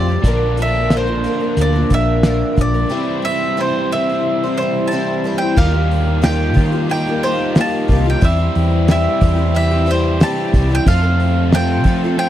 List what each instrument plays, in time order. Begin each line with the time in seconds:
Already playing: fingered electric bass F2, overdriven electric guitar F3 G3 C4 F4, mandolin D5
0.09 twelve-string acoustic guitar C4 F4 G4
0.22 fingered electric bass A#1, overdriven electric guitar A#2 D3 A#3 D4 F4, twelve-string acoustic guitar A#2 D3 F3 A#3, kick, closed hi-hat
0.26 twelve-string acoustic guitar D4 A#4
0.57 twelve-string acoustic guitar F3 A#3 D4, closed hi-hat
0.62 twelve-string acoustic guitar A#4, mandolin E5
0.90 twelve-string acoustic guitar A#2 D3 F3 A#3 D4 A#4, snare, closed hi-hat
0.97 mandolin C5
1.07 twelve-string acoustic guitar F3 A#3 D4 A#4
1.24 twelve-string acoustic guitar F3 A#3 D4 A#4, closed hi-hat
1.40 twelve-string acoustic guitar F3 A#3 D4 A#4
1.57 fingered electric bass D2, closed hi-hat
1.61 mandolin D5
1.73 twelve-string acoustic guitar F3 A#3 D4 A#4
1.90 fingered electric bass A#1, twelve-string acoustic guitar F3 A#3 D4 A#4, mandolin E5, kick, closed hi-hat
2.23 twelve-string acoustic guitar A#2 D3 F3 A#3 D4 A#4, snare, closed hi-hat
2.56 fingered electric bass A#1, twelve-string acoustic guitar F3 A#3 D4 A#4, kick, closed hi-hat
2.61 mandolin D5
2.74 twelve-string acoustic guitar F3 A#3 D4 A#4
2.89 twelve-string acoustic guitar C3 G3 C4 E4 C5, overdriven electric guitar C3 E3 G3
2.93 overdriven electric guitar C4 E4
3.22 twelve-string acoustic guitar G3 C4 E4 C5, mandolin E5
3.57 twelve-string acoustic guitar C3 G3 C4 E4 C5, mandolin C5
3.91 twelve-string acoustic guitar G3 C4 E4 C5, mandolin E5
4.09 twelve-string acoustic guitar C4 E4 C5
4.44 twelve-string acoustic guitar C4 E4 C5
4.58 twelve-string acoustic guitar G3 C4, mandolin C5
4.62 twelve-string acoustic guitar E4 C5
4.88 twelve-string acoustic guitar C3, mandolin A5
4.92 twelve-string acoustic guitar G3 C4 E4 C5
5.24 twelve-string acoustic guitar G3 C4 E4 C5
5.38 twelve-string acoustic guitar E4 C5, mandolin G5
5.43 twelve-string acoustic guitar C4
5.56 fingered electric bass D#2, overdriven electric guitar D#3 G3 A#3 D#4 G4, twelve-string acoustic guitar D#3 F3 A#3 F4 G4, string section D#4 F4 G4, mandolin F5, kick, crash
5.72 twelve-string acoustic guitar A#3 F4 G4
5.91 open hi-hat
6.22 twelve-string acoustic guitar D#3 F3 A#3 F4 G4, mandolin G5, snare, open hi-hat
6.54 fingered electric bass D#3, twelve-string acoustic guitar F3 A#3 F4 G4, kick, open hi-hat
6.72 twelve-string acoustic guitar A#3 F4 G4
6.89 overdriven electric guitar D#3 G3 A#3 D#4 G4, mandolin G5, open hi-hat
7.07 twelve-string acoustic guitar A#3 F4 G4
7.23 twelve-string acoustic guitar F3 A#3 F4 G4, mandolin C5, open hi-hat
7.55 twelve-string acoustic guitar D#3 F3 A#3 F4 G4, snare, open hi-hat
7.61 mandolin A5
7.88 fingered electric bass C2, twelve-string acoustic guitar F3 A#3 F4 G4, kick, open hi-hat
8.04 twelve-string acoustic guitar A#3 F4 G4
8.10 mandolin G5
8.21 fingered electric bass E2, twelve-string acoustic guitar E3 G3 C4 E4 G4, overdriven electric guitar E3 G3, string section C4 E4 G4, mandolin E5, kick, open hi-hat
8.25 overdriven electric guitar C4 G4
8.37 twelve-string acoustic guitar C4 E4 G4
8.55 fingered electric bass E2, open hi-hat
8.88 twelve-string acoustic guitar E3 G3 C4 E4 G4, mandolin E5, snare, open hi-hat
9.21 fingered electric bass E2, twelve-string acoustic guitar G3 C4 E4 G4, kick, open hi-hat
9.36 twelve-string acoustic guitar C4 E4 G4
9.54 overdriven electric guitar E3 G3 C4 G4, mandolin E5, open hi-hat
9.71 twelve-string acoustic guitar C4 E4 G4
9.86 twelve-string acoustic guitar G3 C4 E4 G4, open hi-hat
9.91 mandolin C5
10.20 twelve-string acoustic guitar E3 G3 C4 E4 G4, mandolin A5, snare, open hi-hat
10.53 fingered electric bass C2, twelve-string acoustic guitar G3 C4 E4 G4, kick, open hi-hat
10.69 twelve-string acoustic guitar C4 E4 G4
10.75 mandolin G5
10.85 overdriven electric guitar F2 C3 F3 A3 C4 F4, fingered electric bass F2, twelve-string acoustic guitar F3 C4 F4 A4, string section C4 F4 A4, mandolin F5, kick, open hi-hat
11.03 twelve-string acoustic guitar C4 F4 A4
11.20 open hi-hat
11.52 twelve-string acoustic guitar F3 C4 F4 A4, mandolin G5, snare, open hi-hat
11.84 twelve-string acoustic guitar F3 C4 F4 A4, fingered electric bass F3, kick, open hi-hat
12.04 twelve-string acoustic guitar C4 F4 A4
12.17 overdriven electric guitar F2 C3 F3 A3 C4 F4, mandolin G5, open hi-hat